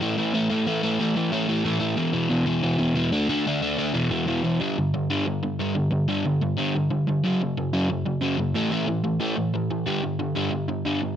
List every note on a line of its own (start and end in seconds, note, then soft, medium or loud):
0.01 0.17 A2 medium
0.01 0.17 E3 medium
0.01 0.16 A3 medium
0.17 0.32 A2 medium
0.17 0.34 E3 medium
0.17 0.33 A3 medium
0.34 0.50 A2 medium
0.34 0.50 E3 medium
0.34 0.49 A3 loud
0.50 0.65 A2 medium
0.50 0.67 E3 medium
0.50 0.66 A3 medium
0.67 0.83 A2 loud
0.67 0.83 E3 loud
0.67 0.82 A3 loud
0.83 0.98 A2 medium
0.83 1.00 E3 medium
0.83 1.00 A3 medium
0.99 1.15 A2 medium
0.99 1.15 E3 medium
0.99 1.15 A3 loud
1.16 1.31 A2 medium
1.16 1.31 E3 medium
1.16 1.31 A3 medium
1.32 1.48 A2 medium
1.32 1.47 E3 medium
1.32 1.47 A3 loud
1.48 1.63 A2 medium
1.48 1.64 E3 medium
1.48 1.65 A3 medium
1.65 1.80 A2 medium
1.65 1.79 E3 medium
1.65 1.79 A3 loud
1.80 1.96 A2 medium
1.80 1.96 E3 medium
1.80 1.96 A3 medium
1.97 2.13 E2 medium
1.97 2.13 B2 loud
1.97 2.12 E3 loud
2.13 2.28 E2 medium
2.13 2.29 B2 medium
2.13 2.29 E3 medium
2.30 2.46 E2 medium
2.30 2.45 B2 medium
2.30 2.45 E3 medium
2.46 2.62 E2 medium
2.46 2.62 B2 medium
2.46 2.63 E3 loud
2.63 2.78 E2 medium
2.63 2.78 B2 medium
2.63 2.77 E3 loud
2.79 2.94 E2 medium
2.79 2.94 B2 medium
2.79 2.95 E3 medium
2.95 3.11 E2 medium
2.95 3.11 B2 medium
2.95 3.11 E3 loud
3.12 3.29 D3 loud
3.12 3.28 A3 loud
3.12 3.28 D4 medium
3.29 3.46 D3 medium
3.29 3.46 A3 medium
3.29 3.46 D4 loud
3.47 3.62 D3 medium
3.47 3.61 A3 medium
3.47 3.61 D4 medium
3.62 3.76 D3 medium
3.62 3.77 A3 loud
3.62 3.78 D4 medium
3.78 3.93 D3 medium
3.78 3.94 A3 medium
3.78 3.94 D4 medium
3.94 4.11 E2 medium
3.94 4.10 B2 loud
3.94 4.10 E3 loud
4.11 4.26 E2 medium
4.11 4.26 B2 medium
4.11 4.27 E3 medium
4.27 4.44 E2 medium
4.27 4.43 B2 medium
4.27 4.43 E3 loud
4.45 4.60 E2 medium
4.45 4.60 B2 medium
4.45 4.60 E3 medium
4.61 4.76 G2 medium
4.61 4.76 D3 medium
4.61 4.76 G3 medium
4.78 4.92 G2 medium
4.78 4.92 D3 medium
4.94 5.08 G2 medium
4.94 5.09 D3 medium
5.10 5.25 G2 medium
5.10 5.25 D3 loud
5.10 5.26 G3 medium
5.26 5.41 G2 medium
5.26 5.41 D3 medium
5.43 5.57 G2 medium
5.43 5.58 D3 medium
5.59 5.74 G2 medium
5.59 5.74 D3 medium
5.59 5.75 G3 medium
5.75 5.90 G2 medium
5.75 5.90 D3 medium
5.91 6.06 G2 medium
5.91 6.07 D3 medium
6.08 6.23 G2 medium
6.08 6.24 D3 medium
6.08 6.24 G3 medium
6.24 6.39 G2 medium
6.24 6.40 D3 medium
6.42 6.56 G2 medium
6.42 6.56 D3 medium
6.57 6.73 G2 medium
6.57 6.73 D3 medium
6.57 6.73 G3 medium
6.75 6.89 G2 medium
6.75 6.89 D3 medium
6.91 7.05 G2 medium
6.91 7.05 D3 medium
7.07 7.22 G2 medium
7.07 7.23 D3 medium
7.24 7.39 F#2 medium
7.24 7.40 C#3 medium
7.24 7.40 F#3 loud
7.41 7.55 F#2 medium
7.41 7.56 C#3 medium
7.57 7.72 F#2 medium
7.57 7.72 C#3 medium
7.73 7.89 F#2 medium
7.73 7.89 C#3 loud
7.73 7.89 F#3 medium
7.90 8.04 F#2 medium
7.90 8.05 C#3 medium
8.06 8.21 F#2 medium
8.06 8.21 C#3 medium
8.22 8.38 F#2 medium
8.22 8.38 C#3 medium
8.22 8.38 F#3 loud
8.39 8.54 F#2 medium
8.39 8.54 C#3 medium
8.55 8.70 A2 medium
8.55 8.70 E3 loud
8.55 8.71 A3 loud
8.71 8.86 A2 medium
8.71 8.87 E3 medium
8.71 8.88 A3 loud
8.88 9.03 A2 medium
8.88 9.03 E3 medium
9.04 9.19 A2 medium
9.04 9.19 E3 medium
9.20 9.36 A2 medium
9.20 9.36 E3 medium
9.20 9.37 A3 medium
9.37 9.52 A2 medium
9.37 9.52 E3 medium
9.54 9.69 A2 medium
9.54 9.69 E3 medium
9.71 9.86 A2 medium
9.71 9.86 E3 medium
9.86 10.02 G2 medium
9.86 10.02 D3 medium
9.86 10.03 G3 medium
10.03 10.18 G2 medium
10.03 10.18 D3 medium
10.19 10.34 G2 medium
10.19 10.35 D3 medium
10.35 10.50 G2 medium
10.35 10.50 D3 medium
10.35 10.52 G3 loud
10.51 10.67 G2 medium
10.51 10.67 D3 medium
10.68 10.84 G2 medium
10.68 10.84 D3 medium
10.85 11.01 G2 medium
10.85 11.02 D3 medium
10.85 11.02 G3 medium
11.03 11.16 G2 medium
11.03 11.16 D3 medium